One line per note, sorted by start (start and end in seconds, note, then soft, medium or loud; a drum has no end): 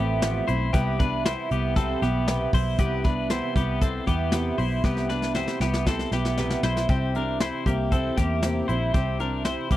0.00 0.40 A1 medium
0.00 0.22 A3 medium
0.00 0.45 B3 medium
0.00 0.22 C4 medium
0.00 0.22 E4 medium
0.00 0.45 G4 medium
0.22 0.48 F3 medium
0.22 0.48 A3 medium
0.22 0.47 C4 medium
0.22 0.46 E4 medium
0.22 snare loud
0.22 closed hi-hat medium
0.47 0.70 B1 medium
0.47 0.73 A3 medium
0.47 0.73 C4 medium
0.47 0.73 E4 medium
0.47 0.73 C5 medium
0.47 closed hi-hat medium
0.73 1.34 C2 medium
0.73 0.99 C3 medium
0.73 0.99 G3 medium
0.73 0.99 B3 medium
0.73 1.00 B3 medium
0.73 0.98 E4 medium
0.73 0.99 G4 loud
0.73 kick loud
0.73 closed hi-hat medium
0.99 1.24 G3 soft
0.99 1.25 B3 soft
0.99 1.25 D4 medium
0.99 1.25 E4 medium
0.99 1.25 B4 medium
0.99 kick loud
0.99 closed hi-hat medium
1.24 1.50 C3 medium
1.24 1.51 G3 medium
1.24 1.50 B3 medium
1.24 1.51 E4 medium
1.24 1.48 E4 medium
1.24 1.51 C5 medium
1.24 snare loud
1.24 closed hi-hat medium
1.49 1.94 C2 loud
1.49 1.75 G3 soft
1.49 1.76 B3 soft
1.49 1.77 B3 medium
1.49 1.76 E4 medium
1.49 1.76 G4 medium
1.49 closed hi-hat medium
1.75 2.01 C3 medium
1.75 2.02 G3 medium
1.75 2.01 B3 medium
1.75 2.02 C4 medium
1.75 2.01 E4 medium
1.75 2.02 A4 medium
1.75 kick loud
1.75 closed hi-hat medium
2.02 2.45 B1 medium
2.02 2.27 G3 soft
2.02 2.28 B3 medium
2.02 2.51 B3 medium
2.02 2.27 E4 medium
2.02 2.50 G4 medium
2.02 snare soft
2.02 closed hi-hat medium
2.28 2.53 C3 medium
2.28 2.53 G3 medium
2.28 2.53 B3 medium
2.28 2.52 E4 medium
2.28 snare medium
2.28 closed hi-hat medium
2.53 2.75 B1 medium
2.53 2.78 G3 soft
2.53 2.79 B3 medium
2.53 2.79 E4 medium
2.53 2.79 C5 medium
2.53 kick medium
2.53 open hi-hat medium
2.78 3.40 C2 medium
2.78 3.04 C3 medium
2.78 3.05 G3 medium
2.78 3.05 B3 medium
2.78 3.04 B3 medium
2.78 3.03 E4 medium
2.78 3.05 G4 medium
2.78 kick loud
2.78 closed hi-hat medium
3.04 3.29 G3 soft
3.04 3.30 B3 medium
3.04 3.30 D4 medium
3.04 3.30 E4 medium
3.04 3.30 B4 medium
3.04 kick medium
3.04 closed hi-hat medium
3.30 3.55 C3 medium
3.30 3.56 G3 medium
3.30 3.55 B3 medium
3.30 3.54 E4 loud
3.30 3.56 E4 medium
3.30 3.56 C5 medium
3.30 snare loud
3.30 closed hi-hat medium
3.55 3.99 C2 medium
3.55 3.80 G3 soft
3.55 3.81 B3 soft
3.55 3.82 B3 medium
3.55 3.81 E4 soft
3.55 3.81 G4 medium
3.55 kick medium
3.55 closed hi-hat medium
3.81 4.07 C3 medium
3.81 4.07 G3 medium
3.81 4.06 B3 medium
3.81 4.07 C4 medium
3.81 4.05 E4 medium
3.81 4.07 A4 medium
3.81 kick medium
3.81 closed hi-hat medium
4.06 4.51 E2 medium
4.06 4.32 G3 soft
4.06 4.33 B3 medium
4.06 4.56 B3 medium
4.06 4.32 E4 medium
4.06 4.55 G4 medium
4.06 kick medium
4.06 closed hi-hat medium
4.32 4.58 C3 medium
4.32 4.58 G3 medium
4.32 4.58 B3 medium
4.32 4.56 E4 medium
4.32 snare medium
4.32 closed hi-hat medium
4.58 4.80 B1 medium
4.58 4.84 G3 soft
4.58 4.84 B3 soft
4.58 4.83 E4 medium
4.58 4.84 E4 medium
4.58 4.84 C5 medium
4.58 open hi-hat medium
4.84 5.45 C2 medium
4.84 5.10 C3 medium
4.84 5.10 G3 medium
4.84 5.10 B3 medium
4.84 5.08 E4 medium
4.84 5.10 G4 medium
4.84 kick loud
4.84 snare soft
4.97 snare soft
5.09 5.35 G3 soft
5.09 5.35 B3 medium
5.09 5.36 D4 medium
5.09 5.35 E4 medium
5.09 5.35 B4 medium
5.09 snare medium
5.22 snare soft
5.34 5.61 C3 medium
5.34 5.61 G3 medium
5.34 5.61 B3 medium
5.34 5.61 E4 medium
5.34 5.59 E4 medium
5.34 5.61 C5 medium
5.34 snare medium
5.47 snare medium
5.60 6.04 C2 medium
5.60 5.85 G3 soft
5.60 5.87 B3 medium
5.60 5.86 B3 soft
5.60 5.86 E4 soft
5.60 5.87 G4 medium
5.60 snare medium
5.74 snare medium
5.85 6.11 C3 medium
5.85 6.12 G3 medium
5.85 6.11 B3 medium
5.85 6.13 C4 medium
5.85 6.10 E4 medium
5.85 6.13 A4 medium
5.85 kick medium
5.85 snare medium
5.99 snare medium
6.12 6.55 B1 medium
6.12 6.36 G3 soft
6.12 6.37 B3 soft
6.12 6.61 B3 medium
6.12 6.37 E4 medium
6.12 6.61 G4 medium
6.12 snare medium
6.25 snare medium
6.38 6.63 C3 medium
6.38 6.63 G3 medium
6.38 6.64 B3 medium
6.38 6.62 E4 medium
6.38 snare medium
6.50 snare medium
6.63 6.85 B1 medium
6.63 6.88 G3 soft
6.63 6.89 B3 medium
6.63 6.89 E4 medium
6.63 6.90 E4 medium
6.63 6.89 C5 medium
6.63 snare medium
6.77 snare medium
6.88 7.50 C2 medium
6.88 7.14 C3 medium
6.88 7.15 G3 medium
6.88 7.14 C4 medium
6.88 7.16 C4 medium
6.88 7.13 E4 medium
6.88 7.15 G4 medium
6.88 kick medium
6.88 closed hi-hat medium
7.14 7.40 G3 soft
7.14 7.41 C4 soft
7.14 7.41 D4 medium
7.14 7.40 E4 medium
7.14 7.41 A#4 medium
7.14 closed hi-hat medium
7.40 7.66 C3 medium
7.40 7.66 G3 medium
7.40 7.66 C4 medium
7.40 7.66 E4 medium
7.40 7.65 E4 medium
7.40 7.66 C5 medium
7.40 snare medium
7.40 closed hi-hat medium
7.66 8.10 C2 medium
7.66 7.92 G3 soft
7.66 7.92 A#3 medium
7.66 7.92 C4 soft
7.66 7.92 E4 soft
7.66 7.92 G4 medium
7.66 kick medium
7.66 closed hi-hat medium
7.92 8.18 C3 medium
7.92 8.18 G3 medium
7.92 8.18 C4 medium
7.92 8.17 C4 medium
7.92 8.16 E4 medium
7.92 8.18 A4 medium
7.92 kick medium
7.92 closed hi-hat medium
8.17 8.61 E2 medium
8.17 8.43 G3 soft
8.17 8.66 A#3 medium
8.17 8.44 C4 medium
8.17 8.43 E4 medium
8.17 8.66 G4 medium
8.17 kick medium
8.17 snare soft
8.17 closed hi-hat medium
8.43 8.68 C3 medium
8.43 8.69 G3 medium
8.43 8.69 C4 medium
8.43 8.67 E4 medium
8.43 snare medium
8.43 closed hi-hat medium
8.68 8.91 A#1 medium
8.68 8.94 G3 soft
8.68 8.95 C4 soft
8.68 8.94 E4 medium
8.68 8.94 C5 medium
8.68 closed hi-hat medium
8.94 9.55 C2 medium
8.94 9.20 C3 medium
8.94 9.20 G3 medium
8.94 9.20 C4 medium
8.94 9.19 C4 medium
8.94 9.18 E4 medium
8.94 9.20 G4 medium
8.94 kick loud
8.94 closed hi-hat medium
9.19 9.44 G3 soft
9.19 9.45 C4 soft
9.19 9.46 D4 medium
9.19 9.45 E4 soft
9.19 9.45 A#4 medium
9.19 closed hi-hat medium
9.44 9.70 C3 medium
9.44 9.71 G3 medium
9.44 9.70 C4 medium
9.44 9.72 E4 medium
9.44 9.68 E4 medium
9.44 9.71 C5 medium
9.44 snare medium
9.44 closed hi-hat medium
9.69 9.77 C2 medium
9.69 9.77 G3 soft
9.69 9.77 A#3 soft
9.69 9.77 C4 soft
9.69 9.77 E4 soft
9.69 9.77 G4 medium
9.69 kick medium
9.69 closed hi-hat medium